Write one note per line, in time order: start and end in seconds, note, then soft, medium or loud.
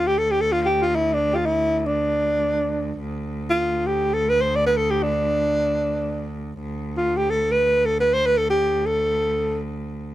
0.00 3.00 D2 medium
0.07 0.20 G4 medium
0.18 0.32 A4 medium
0.31 0.42 G4 medium
0.41 0.54 A4 medium
0.52 0.62 F4 medium
0.62 0.67 F4 medium
0.62 0.83 G4 medium
0.82 0.97 F4 medium
0.95 1.15 E4 medium
1.13 1.35 D4 medium
1.33 1.47 F4 medium
1.33 1.37 G4 medium
1.46 1.80 E4 medium
1.80 1.87 E4 medium
1.86 3.05 D4 medium
3.00 6.61 D2 medium
3.49 3.88 F4 medium
3.87 4.15 G4 medium
4.13 4.30 A4 medium
4.29 4.43 B4 medium
4.41 4.57 C5 medium
4.56 4.66 D5 medium
4.66 4.78 B4 medium
4.77 4.92 A4 medium
4.90 5.04 G4 medium
5.03 6.36 D4 medium
6.62 10.15 D2 medium
6.97 7.18 F4 medium
7.17 7.31 G4 medium
7.30 7.53 A4 medium
7.51 7.87 B4 medium
7.85 7.99 A4 medium
8.00 8.15 B4 medium
8.14 8.28 C5 medium
8.26 8.39 B4 medium
8.37 8.49 A4 medium
8.50 8.87 G4 medium
8.86 9.59 A4 medium